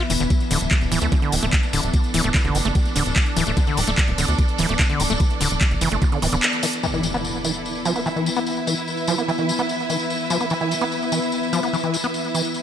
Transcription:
Already playing: E3 B3 E4 B4 E5
0.10 E1 E3, open hi-hat, tambourine
0.20 E1 D3, closed hi-hat, tambourine
0.30 D4, kick, closed hi-hat, tambourine
0.40 closed hi-hat, tambourine
0.50 D1 D3 A4, open hi-hat, tambourine
0.61 D1, closed hi-hat, tambourine
0.71 kick, clap, closed hi-hat, tambourine
0.81 D1, closed hi-hat, tambourine
0.92 D1 E3, open hi-hat, tambourine
1.02 D2 A3, closed hi-hat, tambourine
1.12 D3, kick, closed hi-hat, tambourine
1.22 D3, closed hi-hat, tambourine
1.32 D1 E3, open hi-hat, tambourine
1.42 D1 A3, tambourine
1.50 D5, kick, clap, closed hi-hat, tambourine
1.63 closed hi-hat, tambourine
1.73 D1 D3, open hi-hat, tambourine
1.83 D1, closed hi-hat, tambourine
1.93 kick, closed hi-hat, tambourine
2.04 closed hi-hat, tambourine
2.14 D1 E3, open hi-hat, tambourine
2.24 D1 A3, closed hi-hat, tambourine
2.34 D3, kick, clap, closed hi-hat, tambourine
2.45 F#1 D3, closed hi-hat, tambourine
2.55 F#1 E3, open hi-hat, tambourine
2.65 F#1 A3, closed hi-hat, tambourine
2.75 kick, closed hi-hat, tambourine
2.85 closed hi-hat, tambourine
2.96 D1 D3, open hi-hat, tambourine
3.06 D1, closed hi-hat, tambourine
3.16 kick, clap, closed hi-hat, tambourine
3.26 closed hi-hat, tambourine
3.36 D1 E3, open hi-hat, tambourine
3.47 D1 A3, closed hi-hat, tambourine
3.57 D3, kick, closed hi-hat, tambourine
3.67 D3, closed hi-hat, tambourine
3.77 D1 E3, open hi-hat, tambourine
3.87 D1 A3, closed hi-hat, tambourine
3.98 kick, clap, closed hi-hat, tambourine
4.08 D1, closed hi-hat, tambourine
4.18 D1 D3, open hi-hat, tambourine
4.28 D2, closed hi-hat, tambourine
4.39 kick, closed hi-hat, tambourine
4.48 closed hi-hat, tambourine
4.58 D1 E3, open hi-hat, tambourine
4.69 D1 A3, closed hi-hat, tambourine
4.79 D3, kick, clap, closed hi-hat, tambourine
4.90 D3, closed hi-hat, tambourine
5.00 D1 E3, open hi-hat, tambourine
5.10 D1 A3, closed hi-hat, tambourine
5.20 kick, closed hi-hat, tambourine
5.30 closed hi-hat, tambourine
5.41 D1 D3, open hi-hat, tambourine
5.51 D1, tambourine
5.61 kick, clap, closed hi-hat, tambourine
5.71 F#1, closed hi-hat, tambourine
5.81 F#1 E3, open hi-hat, tambourine
5.91 F#1 A3, closed hi-hat, tambourine
6.02 D3, kick, closed hi-hat, tambourine
6.12 D3, closed hi-hat, tambourine
6.22 D1 E3, open hi-hat, tambourine
6.32 D1 D3, closed hi-hat, tambourine
6.42 clap, closed hi-hat, tambourine
6.53 closed hi-hat, tambourine
6.63 E3, open hi-hat, tambourine
6.73 closed hi-hat, tambourine
6.83 E3 B3 E4, closed hi-hat, tambourine, impact
6.94 E3, closed hi-hat, tambourine
7.03 F3, closed hi-hat, tambourine
7.14 B3, closed hi-hat, tambourine
7.24 B4, closed hi-hat, tambourine
7.34 closed hi-hat, tambourine
7.44 E3, closed hi-hat, tambourine
7.54 closed hi-hat, tambourine
7.65 closed hi-hat, tambourine
7.75 closed hi-hat, tambourine
7.85 F3, closed hi-hat, tambourine
7.90 E5
7.96 B3, closed hi-hat, tambourine
8.06 E3, closed hi-hat, tambourine
8.16 E3, closed hi-hat, tambourine
8.26 F3, closed hi-hat, tambourine
8.36 B3, closed hi-hat, tambourine
8.46 closed hi-hat, tambourine
8.57 closed hi-hat, tambourine
8.67 E3, closed hi-hat, tambourine
8.77 closed hi-hat, tambourine
8.88 closed hi-hat, tambourine
8.97 closed hi-hat, tambourine
9.07 F3, closed hi-hat, tambourine
9.18 B3, closed hi-hat, tambourine
9.28 E3, closed hi-hat, tambourine
9.38 E3, closed hi-hat, tambourine
9.49 F3, closed hi-hat, tambourine
9.59 B3, closed hi-hat, tambourine
9.69 closed hi-hat, tambourine
9.79 closed hi-hat, tambourine
9.90 E3, closed hi-hat, tambourine
10.00 closed hi-hat, tambourine
10.10 closed hi-hat, tambourine
10.20 closed hi-hat, tambourine
10.30 F3, closed hi-hat, tambourine
10.41 B3, closed hi-hat, tambourine
10.50 E3, closed hi-hat, tambourine
10.61 E3, closed hi-hat, tambourine
10.71 F3, closed hi-hat, tambourine
10.81 B3, closed hi-hat, tambourine
10.92 closed hi-hat, tambourine
11.02 closed hi-hat, tambourine
11.12 E3, closed hi-hat, tambourine
11.22 closed hi-hat, tambourine
11.32 closed hi-hat, tambourine
11.43 closed hi-hat, tambourine
11.53 F3, closed hi-hat, tambourine
11.63 B3, closed hi-hat, tambourine
11.73 E3, closed hi-hat, tambourine
11.83 E3, closed hi-hat, tambourine
11.94 F3, closed hi-hat, tambourine
12.04 B3, closed hi-hat, tambourine
12.14 closed hi-hat, tambourine
12.24 closed hi-hat, tambourine
12.34 E3, closed hi-hat, tambourine
12.45 closed hi-hat, tambourine
12.54 closed hi-hat, tambourine

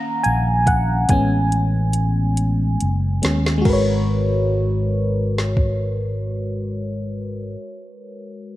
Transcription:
Already playing: D#3 A#3 C#4 F5 F#5 A#5
0.23 A#1 G#5, closed hi-hat
0.67 F#5, kick, closed hi-hat
1.09 A1 G#3 B3 C#4 G#5, kick, closed hi-hat
1.52 closed hi-hat
1.93 closed hi-hat
2.37 closed hi-hat
2.81 F#1, closed hi-hat
3.22 D#2 G#3 B3 C#4, snare, closed hi-hat
3.46 snare
3.58 G#3 F#4
3.65 G#1 A#4, kick, crash
3.69 B4 C#5
5.38 snare
5.57 kick

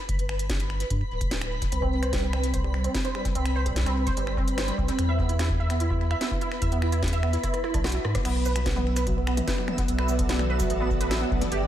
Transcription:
Already playing: B4
0.09 G1, kick, closed hi-hat
0.19 closed hi-hat
0.29 finger snap
0.39 closed hi-hat
0.50 kick, snare, closed hi-hat
0.60 closed hi-hat
0.70 finger snap
0.80 closed hi-hat
0.90 G2, kick, closed hi-hat
1.11 D1
1.21 kick, closed hi-hat
1.31 snare, closed hi-hat
1.41 finger snap, closed hi-hat
1.62 kick, closed hi-hat
1.72 C2 C4, closed hi-hat
1.82 C4, kick
2.03 C5, finger snap, closed hi-hat
2.13 G3, kick, snare, closed hi-hat
2.23 C4
2.33 C4, finger snap
2.43 closed hi-hat
2.54 C5, kick, closed hi-hat
2.64 G3
2.74 C4, finger snap
2.84 C4, closed hi-hat
2.94 kick, snare, closed hi-hat
3.05 C5, closed hi-hat
3.15 G3, finger snap
3.25 C4, kick, closed hi-hat
3.35 C2 C4, closed hi-hat
3.45 finger snap, closed hi-hat
3.56 C5
3.66 G3, kick, closed hi-hat
3.69 kick
3.73 C4, kick
3.76 kick, snare, closed hi-hat
3.80 kick
3.83 C4, finger snap, kick, closed hi-hat
4.07 C5, kick, closed hi-hat
4.17 G1 G3, closed hi-hat
4.27 C4, finger snap
4.37 C4, kick
4.48 closed hi-hat
4.58 C5, finger snap, snare, closed hi-hat
4.68 G3, closed hi-hat
4.78 C2 C4, kick
4.88 C4, closed hi-hat
4.99 E2, finger snap, closed hi-hat
5.09 E5
5.19 B3, kick
5.29 E4, closed hi-hat
5.39 E4, finger snap, snare, closed hi-hat
5.50 kick
5.60 E5
5.70 B3, finger snap, closed hi-hat
5.80 E4, closed hi-hat
5.90 E4, kick
6.11 E5, finger snap
6.21 B3, snare, closed hi-hat
6.31 E4, kick
6.41 E4, closed hi-hat
6.52 finger snap
6.62 E2 E5, kick, closed hi-hat
6.72 B3, closed hi-hat
6.82 E4, finger snap
6.92 E4, closed hi-hat
7.03 kick, snare
7.08 closed hi-hat
7.13 E5, closed hi-hat
7.23 B3, finger snap
7.33 E4, closed hi-hat
7.43 E4, kick, cross-stick, closed hi-hat
7.54 cross-stick, closed hi-hat
7.64 E4, cross-stick
7.74 B1 D4, kick, cross-stick, closed hi-hat
7.84 F#4, cross-stick, snare, closed hi-hat
7.87 closed hi-hat
7.89 closed hi-hat
7.92 E4, closed hi-hat
8.05 G#2, cross-stick
8.15 B3, kick, cross-stick, closed hi-hat
8.25 B1 B3 E5, finger snap, closed hi-hat, crash
8.46 B4, cabasa
8.56 F#3, finger snap, closed hi-hat
8.61 D5
8.66 B3, kick, snare, closed hi-hat
8.74 B3 F#4 A4, high tom
8.96 B4, finger snap, closed hi-hat, cabasa
9.07 F#3, kick, closed hi-hat
9.17 B3
9.27 B3, finger snap
9.37 closed hi-hat, high tom
9.48 B4, kick, snare, closed hi-hat
9.58 F#3
9.68 B3, finger snap, high tom
9.78 B3, kick, closed hi-hat
9.88 B1, closed hi-hat
9.99 B4, finger snap
10.09 F#3, cabasa
10.19 B3, kick, closed hi-hat
10.29 B3, snare, closed hi-hat
10.39 finger snap, high tom
10.50 B4
10.60 F#3, kick, closed hi-hat, cabasa
10.70 A1 B3, closed hi-hat
10.80 B3
10.90 kick
11.01 B4, closed hi-hat
11.11 F#3, finger snap, snare, closed hi-hat
11.21 B3
11.31 B1 B3, kick
11.41 closed hi-hat, high tom
11.52 G1 G4, closed hi-hat
11.62 D3

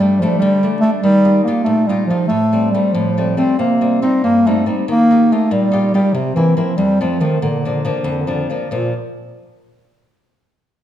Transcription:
Already playing: G2 G3
0.00 G3 A3 D4
0.19 F3 G3 A3 D4
0.38 D3 G3
0.63 G3 A3 D4
0.80 G3 A3 D4
1.02 D#3 G3
1.25 D#4 F4 G4
1.44 A#3 D#4 F4
1.48 G4
1.64 A#2 A3
1.87 G3 D#4 F4 G4
2.07 F3 D#4
2.11 F4 G4
2.28 A2 A3
2.53 G3 A3 C4
2.71 G3 A3 C4
2.93 A2 F3
3.18 G3 A3 C4
3.37 G3 A3 C4
3.59 C3 A#3
3.81 G3 C4 D#4
4.02 G3 C4 D#4
4.24 G2 A#3
4.47 G3 A3 C4 D#4
4.66 G3 C4 D#4
4.88 D#3 A#3
5.11 D#4 F4 G4
5.32 A3 D#4 F4 G4
5.51 A#2 G3
5.72 D#4 F4 G4
5.94 G3 D#4 F4 G4
6.13 C3
6.35 E3 A#3 C4 E4
6.56 F3 A#3 C4 E4
6.77 F2 G3
7.01 F3 A3 C4
7.21 D#3 F3 A3 C4
7.41 A#2 D3
7.50 D3
7.59 D3
7.65 D3 F3 A#3 D4
7.74 D3
7.81 D3
7.85 D3 F3 A#3 D4
7.94 D3
8.02 F2 D3
8.10 D3
8.18 D3
8.26 D3 F3 A#3 D4
8.33 D3
8.50 F3 A#3 D4
8.71 A#2 F3

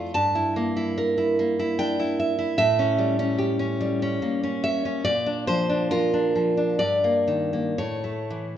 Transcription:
Already playing: F2 A3 E4 F4 D5
0.14 G2 A5
0.35 E4
0.56 A#3
0.76 E4
0.98 A#4
1.18 E4
1.39 A#3
1.59 E4
1.79 D4 G5
2.00 E4
2.20 E5
2.39 E4
2.58 A2 E5
2.79 C#4
2.98 G3
3.19 C#4
3.38 G4
3.59 C#4
3.81 G3
4.02 C#4
4.22 A#3
4.43 C#4
4.64 C#5 E5
4.85 C#4
5.05 A#2 D5
5.26 D4
5.47 F3 C5
5.69 D4
5.91 F4 A#4
6.14 D4
6.36 F3
6.57 D4
6.79 G2 D5
7.04 A#3
7.28 D#3
7.53 A#3
7.78 A2 C#5
8.04 A3
8.30 E3

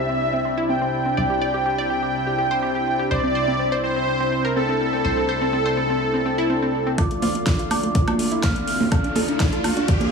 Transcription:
Already playing: C2 C3 C4 D4 E4 E5
0.09 C4
0.33 C4
0.45 C4
0.57 E4
0.69 C4 G5
0.82 C4
1.06 C4
1.17 C2 D5
1.30 G4
1.42 D5
1.54 G4
1.66 G4
1.78 D5
1.90 G4
2.03 G4
2.27 G4
2.39 G4
2.51 C5
2.63 G4
2.75 G4
2.99 G4
3.11 C2 C5 D5
3.24 C4
3.35 C5
3.48 C4
3.59 C4
3.72 C5
3.84 C4 C5
3.96 C4
4.21 C4
4.32 C4
4.45 A#4
4.56 C4 A4
4.69 C4
4.93 C4
5.05 C2 C5
5.17 C4
5.29 C5
5.42 C4
5.53 C4
5.66 C5
5.77 C4
5.90 C4
6.14 C4
6.26 C4
6.38 E4
6.50 C4
6.62 C4
6.87 C4
6.98 D2 D3 A3 F4 D5 D6, kick, closed hi-hat, riser, high woodblock
7.11 A3, closed hi-hat
7.22 F4, open hi-hat, high conga
7.35 A3, closed hi-hat
7.46 A3, kick, snare, closed hi-hat
7.59 F4, closed hi-hat
7.70 A3 F4 D5 D6, open hi-hat, high conga, high woodblock
7.83 A3, closed hi-hat
7.95 kick, closed hi-hat
8.08 A3, closed hi-hat, high conga, high woodblock
8.19 A3, open hi-hat
8.32 E4, closed hi-hat
8.43 A3 D5 F5 F6, kick, snare, closed hi-hat, high conga
8.56 A3, closed hi-hat
8.67 open hi-hat
8.80 A3, high conga
8.92 A4, kick, closed hi-hat, high woodblock
9.04 D4, closed hi-hat
9.15 A4, open hi-hat, high conga
9.28 D4, closed hi-hat
9.40 D4, kick, snare, closed hi-hat
9.53 A4, closed hi-hat
9.64 D4, open hi-hat, high conga, high woodblock
9.77 D4, closed hi-hat
9.88 kick, closed hi-hat
10.00 D4, closed hi-hat, high conga

